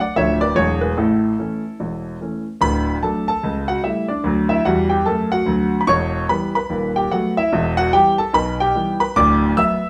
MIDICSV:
0, 0, Header, 1, 2, 480
1, 0, Start_track
1, 0, Key_signature, 2, "major"
1, 0, Tempo, 409836
1, 1135, Time_signature, 4, 2, 24, 8
1, 11590, End_track
2, 0, Start_track
2, 0, Title_t, "Grand piano"
2, 0, Program_c, 0, 0
2, 0, Note_on_c, 0, 78, 83
2, 14, Note_on_c, 0, 74, 69
2, 151, Note_off_c, 0, 78, 0
2, 174, Note_off_c, 0, 74, 0
2, 189, Note_on_c, 0, 38, 66
2, 191, Note_on_c, 0, 26, 65
2, 191, Note_on_c, 0, 53, 46
2, 191, Note_on_c, 0, 76, 90
2, 199, Note_on_c, 0, 57, 41
2, 205, Note_on_c, 0, 62, 42
2, 206, Note_on_c, 0, 73, 73
2, 437, Note_off_c, 0, 76, 0
2, 450, Note_off_c, 0, 53, 0
2, 456, Note_off_c, 0, 57, 0
2, 460, Note_off_c, 0, 62, 0
2, 468, Note_off_c, 0, 73, 0
2, 480, Note_on_c, 0, 74, 91
2, 493, Note_on_c, 0, 71, 68
2, 591, Note_off_c, 0, 38, 0
2, 592, Note_off_c, 0, 26, 0
2, 632, Note_off_c, 0, 74, 0
2, 649, Note_on_c, 0, 40, 72
2, 652, Note_on_c, 0, 28, 64
2, 653, Note_off_c, 0, 71, 0
2, 653, Note_on_c, 0, 54, 38
2, 655, Note_on_c, 0, 73, 92
2, 659, Note_on_c, 0, 56, 38
2, 666, Note_on_c, 0, 68, 64
2, 669, Note_on_c, 0, 62, 35
2, 907, Note_off_c, 0, 73, 0
2, 918, Note_off_c, 0, 54, 0
2, 922, Note_off_c, 0, 56, 0
2, 929, Note_off_c, 0, 62, 0
2, 937, Note_off_c, 0, 68, 0
2, 951, Note_on_c, 0, 71, 78
2, 972, Note_on_c, 0, 68, 59
2, 1059, Note_off_c, 0, 40, 0
2, 1061, Note_off_c, 0, 28, 0
2, 1106, Note_off_c, 0, 71, 0
2, 1132, Note_off_c, 0, 68, 0
2, 1139, Note_on_c, 0, 33, 62
2, 1139, Note_on_c, 0, 45, 75
2, 1140, Note_on_c, 0, 69, 64
2, 1159, Note_on_c, 0, 64, 52
2, 1545, Note_off_c, 0, 33, 0
2, 1545, Note_off_c, 0, 45, 0
2, 1629, Note_on_c, 0, 57, 36
2, 1631, Note_on_c, 0, 52, 38
2, 1631, Note_on_c, 0, 61, 46
2, 1889, Note_off_c, 0, 57, 0
2, 1890, Note_off_c, 0, 52, 0
2, 1890, Note_off_c, 0, 61, 0
2, 2106, Note_on_c, 0, 28, 43
2, 2107, Note_on_c, 0, 40, 49
2, 2361, Note_off_c, 0, 69, 0
2, 2509, Note_off_c, 0, 28, 0
2, 2509, Note_off_c, 0, 40, 0
2, 2539, Note_off_c, 0, 64, 0
2, 2587, Note_on_c, 0, 52, 33
2, 2594, Note_on_c, 0, 57, 33
2, 2600, Note_on_c, 0, 61, 40
2, 2847, Note_off_c, 0, 52, 0
2, 2852, Note_off_c, 0, 57, 0
2, 2857, Note_off_c, 0, 61, 0
2, 3053, Note_on_c, 0, 38, 77
2, 3060, Note_on_c, 0, 26, 72
2, 3063, Note_on_c, 0, 83, 108
2, 3074, Note_on_c, 0, 71, 65
2, 3461, Note_off_c, 0, 38, 0
2, 3465, Note_off_c, 0, 26, 0
2, 3467, Note_off_c, 0, 83, 0
2, 3511, Note_off_c, 0, 71, 0
2, 3544, Note_on_c, 0, 54, 42
2, 3544, Note_on_c, 0, 81, 75
2, 3553, Note_on_c, 0, 57, 46
2, 3557, Note_on_c, 0, 62, 45
2, 3563, Note_on_c, 0, 69, 62
2, 3792, Note_off_c, 0, 81, 0
2, 3805, Note_off_c, 0, 54, 0
2, 3812, Note_off_c, 0, 57, 0
2, 3814, Note_off_c, 0, 62, 0
2, 3826, Note_off_c, 0, 69, 0
2, 3842, Note_on_c, 0, 81, 85
2, 3856, Note_on_c, 0, 69, 62
2, 4020, Note_on_c, 0, 49, 60
2, 4024, Note_on_c, 0, 37, 67
2, 4245, Note_off_c, 0, 81, 0
2, 4291, Note_off_c, 0, 69, 0
2, 4310, Note_on_c, 0, 78, 83
2, 4323, Note_on_c, 0, 66, 56
2, 4425, Note_off_c, 0, 49, 0
2, 4428, Note_off_c, 0, 37, 0
2, 4466, Note_off_c, 0, 78, 0
2, 4487, Note_off_c, 0, 66, 0
2, 4488, Note_on_c, 0, 55, 38
2, 4494, Note_on_c, 0, 76, 69
2, 4498, Note_on_c, 0, 57, 44
2, 4506, Note_on_c, 0, 64, 51
2, 4747, Note_off_c, 0, 76, 0
2, 4754, Note_off_c, 0, 55, 0
2, 4761, Note_off_c, 0, 57, 0
2, 4777, Note_off_c, 0, 64, 0
2, 4784, Note_on_c, 0, 74, 71
2, 4798, Note_on_c, 0, 62, 62
2, 4964, Note_on_c, 0, 38, 73
2, 4988, Note_on_c, 0, 54, 66
2, 5195, Note_off_c, 0, 74, 0
2, 5241, Note_off_c, 0, 62, 0
2, 5261, Note_on_c, 0, 76, 80
2, 5276, Note_on_c, 0, 64, 70
2, 5352, Note_off_c, 0, 38, 0
2, 5367, Note_off_c, 0, 54, 0
2, 5420, Note_off_c, 0, 76, 0
2, 5444, Note_off_c, 0, 64, 0
2, 5450, Note_on_c, 0, 78, 81
2, 5452, Note_on_c, 0, 40, 73
2, 5465, Note_on_c, 0, 66, 70
2, 5471, Note_on_c, 0, 55, 69
2, 5704, Note_off_c, 0, 78, 0
2, 5733, Note_on_c, 0, 79, 73
2, 5737, Note_off_c, 0, 66, 0
2, 5751, Note_on_c, 0, 67, 59
2, 5837, Note_off_c, 0, 40, 0
2, 5848, Note_off_c, 0, 55, 0
2, 5896, Note_off_c, 0, 79, 0
2, 5919, Note_on_c, 0, 42, 61
2, 5921, Note_off_c, 0, 67, 0
2, 5922, Note_on_c, 0, 81, 69
2, 5931, Note_on_c, 0, 69, 65
2, 5942, Note_on_c, 0, 57, 63
2, 6180, Note_off_c, 0, 81, 0
2, 6209, Note_off_c, 0, 69, 0
2, 6227, Note_on_c, 0, 78, 87
2, 6241, Note_on_c, 0, 66, 62
2, 6309, Note_off_c, 0, 42, 0
2, 6323, Note_off_c, 0, 57, 0
2, 6395, Note_on_c, 0, 38, 71
2, 6420, Note_on_c, 0, 54, 64
2, 6714, Note_off_c, 0, 78, 0
2, 6768, Note_off_c, 0, 66, 0
2, 6787, Note_off_c, 0, 38, 0
2, 6801, Note_off_c, 0, 54, 0
2, 6801, Note_on_c, 0, 83, 66
2, 6878, Note_on_c, 0, 85, 107
2, 6880, Note_on_c, 0, 28, 74
2, 6884, Note_on_c, 0, 40, 72
2, 6893, Note_off_c, 0, 83, 0
2, 6897, Note_on_c, 0, 73, 82
2, 7293, Note_off_c, 0, 85, 0
2, 7294, Note_off_c, 0, 28, 0
2, 7296, Note_off_c, 0, 40, 0
2, 7342, Note_off_c, 0, 73, 0
2, 7369, Note_on_c, 0, 52, 48
2, 7370, Note_on_c, 0, 55, 46
2, 7371, Note_on_c, 0, 83, 89
2, 7376, Note_on_c, 0, 59, 52
2, 7388, Note_on_c, 0, 71, 66
2, 7625, Note_off_c, 0, 83, 0
2, 7635, Note_off_c, 0, 52, 0
2, 7636, Note_off_c, 0, 55, 0
2, 7639, Note_off_c, 0, 59, 0
2, 7658, Note_off_c, 0, 71, 0
2, 7675, Note_on_c, 0, 83, 83
2, 7689, Note_on_c, 0, 71, 71
2, 7842, Note_on_c, 0, 27, 58
2, 7844, Note_on_c, 0, 39, 63
2, 8082, Note_off_c, 0, 83, 0
2, 8128, Note_off_c, 0, 71, 0
2, 8152, Note_on_c, 0, 79, 82
2, 8166, Note_on_c, 0, 67, 69
2, 8256, Note_off_c, 0, 27, 0
2, 8256, Note_off_c, 0, 39, 0
2, 8307, Note_off_c, 0, 79, 0
2, 8329, Note_off_c, 0, 67, 0
2, 8330, Note_on_c, 0, 54, 45
2, 8333, Note_on_c, 0, 78, 76
2, 8334, Note_on_c, 0, 57, 53
2, 8339, Note_on_c, 0, 59, 51
2, 8343, Note_on_c, 0, 66, 67
2, 8587, Note_off_c, 0, 78, 0
2, 8595, Note_off_c, 0, 54, 0
2, 8598, Note_off_c, 0, 57, 0
2, 8602, Note_off_c, 0, 59, 0
2, 8616, Note_off_c, 0, 66, 0
2, 8636, Note_on_c, 0, 76, 86
2, 8649, Note_on_c, 0, 64, 70
2, 8814, Note_on_c, 0, 40, 78
2, 8816, Note_on_c, 0, 28, 79
2, 9042, Note_off_c, 0, 76, 0
2, 9087, Note_off_c, 0, 64, 0
2, 9103, Note_on_c, 0, 78, 102
2, 9116, Note_on_c, 0, 66, 76
2, 9222, Note_off_c, 0, 40, 0
2, 9223, Note_off_c, 0, 28, 0
2, 9262, Note_off_c, 0, 78, 0
2, 9284, Note_off_c, 0, 66, 0
2, 9285, Note_on_c, 0, 52, 50
2, 9288, Note_on_c, 0, 55, 49
2, 9288, Note_on_c, 0, 79, 93
2, 9290, Note_on_c, 0, 59, 51
2, 9299, Note_on_c, 0, 67, 77
2, 9544, Note_off_c, 0, 79, 0
2, 9552, Note_off_c, 0, 52, 0
2, 9554, Note_off_c, 0, 55, 0
2, 9555, Note_off_c, 0, 59, 0
2, 9574, Note_off_c, 0, 67, 0
2, 9584, Note_on_c, 0, 81, 86
2, 9598, Note_on_c, 0, 69, 63
2, 9743, Note_off_c, 0, 81, 0
2, 9760, Note_on_c, 0, 35, 68
2, 9760, Note_on_c, 0, 47, 61
2, 9765, Note_off_c, 0, 69, 0
2, 9772, Note_on_c, 0, 83, 100
2, 9781, Note_on_c, 0, 71, 72
2, 10026, Note_off_c, 0, 83, 0
2, 10055, Note_off_c, 0, 71, 0
2, 10077, Note_on_c, 0, 79, 91
2, 10088, Note_on_c, 0, 67, 74
2, 10174, Note_off_c, 0, 35, 0
2, 10174, Note_off_c, 0, 47, 0
2, 10253, Note_on_c, 0, 52, 48
2, 10258, Note_on_c, 0, 55, 45
2, 10265, Note_on_c, 0, 59, 53
2, 10483, Note_off_c, 0, 79, 0
2, 10517, Note_off_c, 0, 52, 0
2, 10521, Note_off_c, 0, 55, 0
2, 10526, Note_off_c, 0, 59, 0
2, 10527, Note_off_c, 0, 67, 0
2, 10543, Note_on_c, 0, 83, 95
2, 10552, Note_on_c, 0, 71, 74
2, 10702, Note_off_c, 0, 83, 0
2, 10722, Note_off_c, 0, 71, 0
2, 10730, Note_on_c, 0, 86, 115
2, 10731, Note_on_c, 0, 38, 92
2, 10734, Note_on_c, 0, 26, 83
2, 10740, Note_on_c, 0, 74, 85
2, 11140, Note_off_c, 0, 86, 0
2, 11141, Note_off_c, 0, 38, 0
2, 11142, Note_off_c, 0, 26, 0
2, 11184, Note_off_c, 0, 74, 0
2, 11208, Note_on_c, 0, 54, 51
2, 11209, Note_on_c, 0, 88, 102
2, 11217, Note_on_c, 0, 59, 60
2, 11227, Note_on_c, 0, 76, 81
2, 11474, Note_off_c, 0, 54, 0
2, 11480, Note_off_c, 0, 59, 0
2, 11590, Note_off_c, 0, 76, 0
2, 11590, Note_off_c, 0, 88, 0
2, 11590, End_track
0, 0, End_of_file